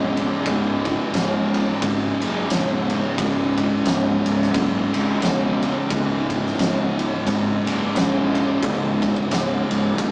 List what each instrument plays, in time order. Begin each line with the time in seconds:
Already playing: fingered electric bass E1, distorted electric guitar C#2 G#2 C#3
0.17 ride
0.44 fingered electric bass C#1, distorted electric guitar C#2 G#2 C#3, kick, ride
0.85 kick, ride
1.14 fingered electric bass C#1, snare, ride
1.54 ride
1.82 fingered electric bass G#1, kick, ride
2.20 fingered electric bass F#1, distorted electric guitar C#2 G#2 C#3, ride
2.50 fingered electric bass E1, distorted electric guitar C#2 G#2 C#3, snare, ride
2.90 ride
3.18 fingered electric bass C#1, distorted electric guitar C#2 G#2 C#3, kick, ride
3.58 kick, ride
3.86 fingered electric bass C#1, snare, ride
4.26 fingered electric bass C#1, ride
4.42 snare
4.54 fingered electric bass F#1, kick, ride
4.93 fingered electric bass G#1, distorted electric guitar C#2 G#2 C#3, ride
5.22 fingered electric bass E1, distorted electric guitar C#2 G#2 C#3, snare, ride
5.63 ride
5.89 fingered electric bass C#1, distorted electric guitar C#2 G#2 C#3, kick, ride
6.30 kick, ride
6.46 snare
6.59 fingered electric bass C#1, snare, ride
6.99 ride
7.26 fingered electric bass G#1, kick, ride
7.65 fingered electric bass F#1, distorted electric guitar C#2 G#2 C#3, ride
7.93 fingered electric bass E1, distorted electric guitar C#2 G#2 C#3, snare, ride
8.35 ride
8.61 fingered electric bass C#1, distorted electric guitar C#2 G#2 C#3, kick, ride
9.02 kick, ride
9.16 kick
9.31 fingered electric bass C#1, snare, ride
9.70 fingered electric bass C#1, ride
9.98 fingered electric bass F#1, kick, ride